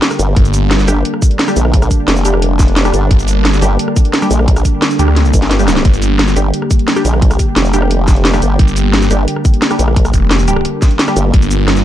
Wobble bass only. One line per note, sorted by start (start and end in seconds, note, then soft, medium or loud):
0.19 0.35 G1 loud
0.88 1.04 G1 medium
1.56 1.89 A#1 loud
2.08 2.92 F1 loud
2.94 3.09 G1 loud
3.62 3.78 G1 loud
4.31 4.64 A#1 loud
5.34 5.84 G1 medium
6.36 6.52 G1 medium
7.05 7.38 A#1 loud
7.56 8.41 F1 loud
8.42 8.58 G1 loud
9.11 9.26 G1 medium
9.79 10.12 A#1 loud
11.16 11.32 G1 loud